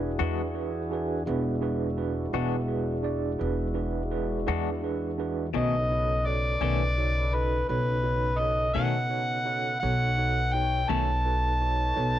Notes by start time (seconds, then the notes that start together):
Already playing: E1 D4 E4 F#4 G#4 B4
0.19 E2 E3 G#3 D4 F#4 G#4 B4
0.54 D4 F#4 G#4 B4
0.91 D4 F#4 G#4 B4
1.25 E1 G#3 D4 E4 F#4 G#4 B4
1.61 D4 F#4 G#4 B4
1.97 D4 F#4 G#4 B4
2.33 E1 E3 G#3 D4 F#4 G#4 B4
2.68 D4 F#4 G#4 B4
3.03 D4 F#4 G#4 D5
3.39 E1 D4 F#4 G#4 B4
3.74 D4 F#4 G#4 B4
4.11 D4 F#4 G#4 B4
4.46 E2 E3 G#3 D4 F#4 G#4 B4
4.82 D4 F#4 G#4 B4
5.18 D4 F#4 G#4 B4
5.54 B1 B2 C#3 D#3 A3 C#4 D#4 F#4 A4 B4 C#5 D#5
5.91 D#4 F#4 A4 C#5
6.26 D#4 F#4 A4 C#5 D5
6.61 B1 B2 D#3 A3 C#4 D#4 F#4 A4 B4
6.98 D#4 F#4 A4 C#5
7.34 D#4 F#4 A4 B4 D#5
7.69 B1 D#4 F#4 A4 B4 C#5
8.03 D#4 F#4 A4 C#5
8.39 D#4 F#4 A4 C#5 D#5
8.74 B2 D#3 A3 C#4 D#4 F#4 A4 C#5 F#5
9.10 D#4 F#4 A4 C#5
9.45 D#4 F#4 A4 C#5
9.80 B1 D#4 F#4 A4 B4 C#5 F#5
9.84 A4
10.18 D#4 F#4 A4 C#5
10.53 D#4 F#4 A4 C#5 G5
10.89 B1 B2 D#3 A3 C#4 D#4 F#4 A4 C#5 A5
11.26 D#4 F#4 A4 B4
11.61 D#4 F#4 A4 C#5
11.96 B1 D#4 F#4 A4 C#5